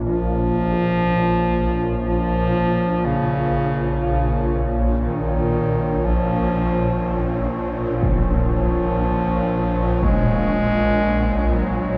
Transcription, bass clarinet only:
\new Staff \with { instrumentName = "Bass clarinet" } { \clef bass \time 4/4 \key bes \minor \tempo 4 = 60 f2 f4 des4 | des8. r16 ees4 f4. r8 | f2 aes4. ges8 | }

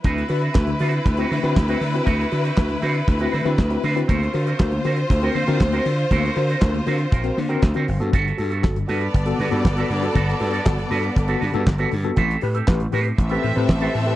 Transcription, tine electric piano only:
\new Staff \with { instrumentName = "Tine electric piano" } { \time 4/4 \key d \mixolydian \tempo 4 = 119 <d a>16 r16 <fis' b'>16 r16 <fis' b'>16 <d a>16 <fis' b'>16 r8 <c' e' fis' b'>16 <d a>16 <c' e' fis' b'>16 r16 <c' e' fis' b'>16 <d a>16 <c' e' fis' b'>16 | <d a>16 r16 <fis' b'>16 r16 <fis' b'>16 <d a>16 <fis' b'>16 r8 <c' e' fis' b'>16 <d a>16 <c' e' fis' b'>16 r16 <c' e' fis' b'>16 <d a>16 <c' e' fis' b'>16 | <d ais>16 r16 <fis' ais'>16 r16 <fis' ais'>16 <d ais>16 <fis' ais'>16 r8 <c' fis' ais'>16 <d ais>16 <c' fis' ais'>16 <d ais>16 <c' fis' ais'>16 <fis' ais'>16 r16 | <d ais>16 r16 <fis' ais'>16 r16 <fis' ais'>16 <d ais>16 <fis' ais'>16 r8 <c' fis' ais'>16 <d ais>16 <c' fis' ais'>16 r16 <c' fis' ais'>16 <g, d>16 <b fis' a'>16 |
<g, d>16 r16 <fis' a'>16 r16 <fis' a'>16 <g, d>16 <fis' a'>16 r8 <b fis' a'>16 <g, d>16 <b fis' a'>16 r16 <b fis' a'>16 <g, d>16 <b fis' a'>16 | <g, d>16 r16 <fis' a'>16 r16 <fis' a'>16 <g, d>16 <fis' a'>16 r8 <b fis' a'>16 <g, d>16 <b fis' a'>16 r16 <b fis' a'>16 <g, d>16 <b fis' a'>16 | <a, e>16 r16 <g' b'>16 r16 <g' b'>16 <a, e>16 <g' b'>16 r8 <c' g' b'>16 <a, e>16 <c' g' b'>16 r16 <c' g' b'>16 <a, e>16 <c' g' b'>16 | }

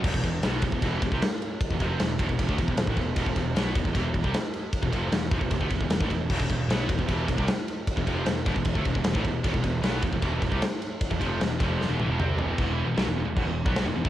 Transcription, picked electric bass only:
\new Staff \with { instrumentName = "Picked electric bass" } { \clef bass \time 4/4 \key c \lydian \tempo 4 = 153 e,,16 e,,16 e,,8 b,,8 e,,16 e,,16 e,,8 e,,16 c,16 r4 | r16 e,,16 f,,8 e,,8 e,,16 e,,16 e,,16 d,16 e,,16 e,,16 e,,16 a,,16 e,,8 | e,,16 e,,16 e,,8 b,,8 e,,16 e,,16 e,,8 e,,16 c,16 r4 | r16 e,,16 f,,8 e,,8 e,,16 e,,16 e,,16 d,16 e,,16 e,,16 e,,16 a,,16 e,,8 |
e,,16 e,,16 e,,8 b,,8 e,,16 e,,16 e,,8 e,,16 c,16 r4 | r16 e,,16 f,,8 e,,8 e,,16 e,,16 e,,16 d,16 e,,16 e,,16 e,,16 a,,16 e,,8 | e,,16 e,,16 e,,8 b,,8 e,,16 e,,16 e,,8 e,,16 c,16 r4 | r16 e,,16 f,,8 e,,8 f,,8. e,,16 a,,16 e,,16 c,8 e,,8 |
e,,8. e,,16 b,,16 e,,16 e,,16 e,,16 e,,16 e,,8 b,,8 e,,16 e,,16 d,16 | }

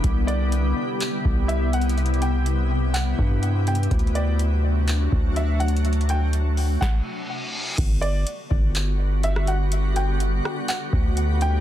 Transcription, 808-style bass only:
\new Staff \with { instrumentName = "808-style bass" } { \clef bass \time 4/4 \key g \major \tempo 4 = 124 c,4. r4 c,4.~ | c,2~ c,8 g,4. | d,2~ d,8 d,4.~ | d,2 r2 |
g,,4 r8 g,,2~ g,,8~ | g,,4. r4 d,4. | }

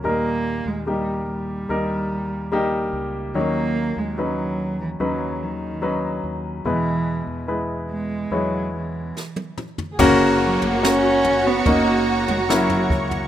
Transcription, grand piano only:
<<
  \new Staff \with { instrumentName = "Grand piano" } { \time 4/4 \key fis \mixolydian \tempo 4 = 72 <g ais dis' ais'>4 <g ais dis' g'>4 <g ais dis' ais'>4 <g ais dis' g'>4 | <fis cis' dis' cis''>4 <fis cis' dis' b'>4 <fis cis' dis' b'>4 <fis cis' dis' b'>4 | <gis b e' b'>4 <gis b e' b'>4 <gis b e' cis''>4 r4 | <ais cis' fis'>4 <ais cis' fis'>4 <ais cis' dis'>4 <ais cis' e'>4 | }
  \new Staff \with { instrumentName = "Grand piano" } { \clef bass \time 4/4 \key fis \mixolydian ais,4. r2 r8 | dis4. r2 r8 | b,4. r2 r8 | cis4. r2 r8 | }
>>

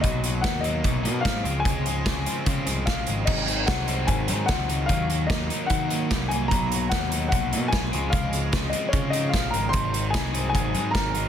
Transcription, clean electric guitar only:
\new Staff \with { instrumentName = "Clean electric guitar" } { \clef bass \time 4/4 \key aes \mixolydian \tempo 4 = 149 <b, fis ais dis'>8 <fis ais dis'>8 <b, fis ais dis'>8 <b, fis ais dis'>8 <b, fis ais dis'>8 <b, fis ais dis'>8 <b, fis ais dis'>8 <des f aes c'>8 | <des f aes c'>8 <f aes c'>8 <des f aes c'>8 <des f aes c'>8 <des f aes c'>8 <des f aes c'>8 <des f aes c'>8 <f aes c'>8 | <aes, ees ges c' ees'>8 <ges c' ees'>8 <ees ges c' ees'>8 <aes, ees ges c' ees'>8 <ees ges c' ees'>8 <aes, ees ges c' ees'>8 <ees ges c' ees'>8 <ges c' ees'>8 | <ees ges bes ees'>8 <ges bes ees'>8 <ees ges bes ees'>8 <ees ges bes ees'>8 <ees ges bes ees'>8 <ees ges bes ees'>8 <ees ges bes ees'>8 <ges bes ees'>8 |
<b, fis ais dis'>8 <fis ais dis'>8 <b, fis ais dis'>8 <b, fis ais dis'>8 <b, ais dis'>8 <b, fis ais dis'>8 <b, ais dis'>8 <des f aes c'>8 | <des f aes c'>8 <f aes c'>8 <des f aes c'>8 <des f aes c'>8 <des f aes c'>8 <des f aes c'>8 <des f aes c'>8 <f aes c'>8 | <aes, ees ges c' ees'>8 <ges c' ees'>8 <ees ges c' ees'>8 <aes, ees ges c' ees'>8 <ees ges c' ees'>8 <aes, ees ges c' ees'>8 <ees ges c' ees'>8 <ges c' ees'>8 | }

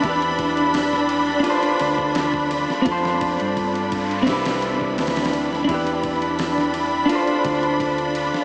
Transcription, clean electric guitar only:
\new Staff \with { instrumentName = "Clean electric guitar" } { \time 4/4 \key e \phrygian \tempo 4 = 85 <d' e' g' b'>2 <d' f' a' c''>2 | <c' f' a' c''>2 <c' e' g' b'>2 | <d' e' g' b'>2 <d' f' a' c''>2 | }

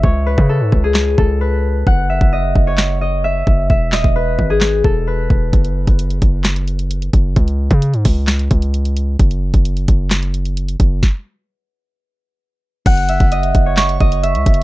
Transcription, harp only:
\new Staff \with { instrumentName = "Harp" } { \time 4/4 \key fis \dorian \tempo 4 = 131 cis''8 b'8 a'8. gis'8. a'8 b'4 | fis''8 e''8 dis''8. cis''8. dis''8 e''8 r8 | e''8 dis''8 b'8. gis'8. a'8 b'4 | r1 |
r1 | r1 | r1 | fis''8 e''8 dis''8. cis''8. dis''8 e''8 r8 | }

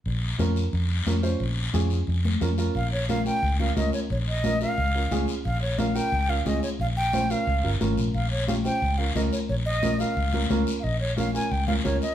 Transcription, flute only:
\new Staff \with { instrumentName = "Flute" } { \time 4/4 \key bes \dorian \tempo 4 = 178 r1 | r1 | f''8 des''8 f''8 g''4 f''8 ees''8 des''8 | des''8 ees''4 f''2 r8 |
f''8 des''8 f''8 g''4 f''8 ees''8 des''8 | f''8 g''4 f''4~ f''16 r4 r16 | f''8 des''8 f''8 g''4 f''8 ees''8 des''8 | des''8 ees''4 f''2 r16. f''32 |
ees''8 des''8 f''8 aes''8 g''8 f''8 des''8 ees''8 | }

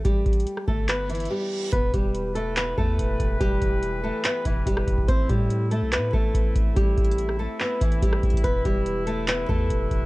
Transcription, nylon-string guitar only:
\new Staff \with { instrumentName = "Nylon-string guitar" } { \time 4/4 \key e \minor \tempo 4 = 143 <g g'>4. <a a'>8 <b b'>8 <e e'>8 <g g'>4 | <b b'>8 <g g'>4 <a a'>8 <b b'>8 <a a'>4. | <g g'>4. <a a'>8 <b b'>8 <e e'>8 <g g'>4 | <c' c''>8 <g g'>4 <a a'>8 <b b'>8 <a a'>4. |
<g g'>4. <a a'>8 <b b'>8 <e e'>8 <g g'>4 | <b b'>8 <g g'>4 <a a'>8 <b b'>8 <a a'>4. | }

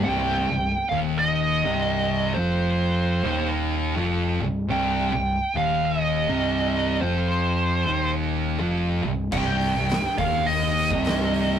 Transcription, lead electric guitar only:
\new Staff \with { instrumentName = "Lead electric guitar" } { \time 4/4 \key c \minor \tempo 4 = 103 g''4. f''8 ees''2 | c''2 r2 | g''4. f''8 ees''2 | c''2 r2 |
g''4. f''8 ees''2 | }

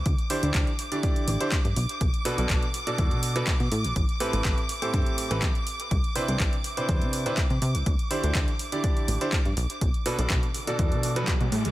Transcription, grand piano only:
\new Staff \with { instrumentName = "Grand piano" } { \time 4/4 \key b \phrygian \tempo 4 = 123 r8 <d d' e' g' c''>16 <d d' e' g' c''>8 r8 <d d' e' g' d''>16 <d d' e' g' d''>8. <d d' e' g' c''>16 r4 | r8 <b, d' fis' a' b'>16 <b, d' fis' a' b'>8 r8 <b, d' fis' a' d''>16 <b, d' fis' a' d''>8. <b, d' fis' a' b'>16 r4 | r8 <a, c' g' a' b'>16 <a, c' g' a' b'>8 r8 <a, c' g' a' c''>16 <c' g' c''>8. <a, c' g' a' b'>16 r4 | r8 <c d' e' b' c''>16 <c d' e' b' c''>8 r8 <c d' e' b' c''>16 <c d' e' b' c''>8. <c d' e' b' c''>16 r4 |
r8 <d d' e' g' c''>16 <d d' e' g' c''>8 r8 <d d' e' g' d''>16 <d d' e' g' d''>8. <d d' e' g' c''>16 r4 | r8 <b, d' fis' a' b'>16 <b, d' fis' a' b'>8 r8 <b, d' fis' a' d''>16 <b, d' fis' a' d''>8. <b, d' fis' a' b'>16 r4 | }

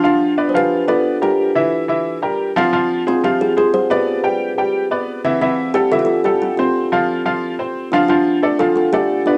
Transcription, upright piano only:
\new Staff \with { instrumentName = "Upright piano" } { \time 4/4 \key c \major \tempo 4 = 179 <f f' f''>4 <b b' d''>8 <f f' f''>4 <b b' d''>4 <g g' bes'>8~ | <g g' bes'>8 <e e' e''>4 <e e' e''>4 <g g' bes'>4 <f f' f''>8 | <f f' f''>4 <aes aes' c''>8 <f f' f''>4 <aes aes' c''>4 <b b' d''>8~ | <b b' d''>8 <g g' g''>4 <g g' g''>4 <b b' d''>4 <e e' e''>8 |
<e e' e''>4 <g g' a'>8 <e e' e''>4 <g g' a'>4 <c' c''>8~ | <c' c''>8 <f f' f''>4 <f f' f''>4 <c' c''>4 <f f' f''>8 | <f f' f''>4 <a a' d''>8 <f f' f''>4 <a a' d''>4 <b b' d''>8 | }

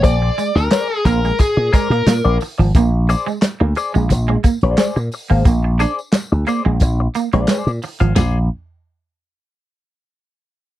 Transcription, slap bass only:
\new Staff \with { instrumentName = "Slap bass" } { \clef bass \time 4/4 \key bes \mixolydian \tempo 4 = 89 bes,,8 r16 d,16 r8 bes,,8 r16 bes,16 r16 bes,16 bes,16 bes,,16 r16 aes,,16 | bes,,8. r8 d,16 r16 bes,,16 bes,,8 r16 bes,,16 r16 bes,16 r16 aes,,16 | bes,,8. r8 d,16 r16 bes,,16 bes,,8 r16 bes,,16 r16 bes,16 r16 aes,,16 | bes,,8 r2. r8 | }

